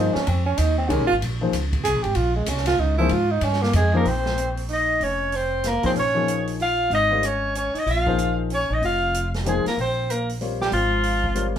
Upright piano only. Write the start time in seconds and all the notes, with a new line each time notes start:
Already playing: F3 A#3 D#4 G#4 C5
0.89 D#3 G#3 C#4 G4 A#4
1.41 F3 A#3 D#4 G#4 C5
2.99 F3 A#3 D#4 G#4 C5
3.93 F3 A#3 D#4 G#4 C5
5.83 F3 A#3 D#4 G#4 C#5
6.14 F3 A#3 D#4 G#4 C#5
7.11 G3 C4 F4 A#4 D#5
8.06 F3 A#3 D#4 G#4 C5
9.46 F3 A#3 D#4 G#4 C5
10.41 G3 C4 F4 A#4 C#5
11.35 G3 C4 F4 A#4 C#5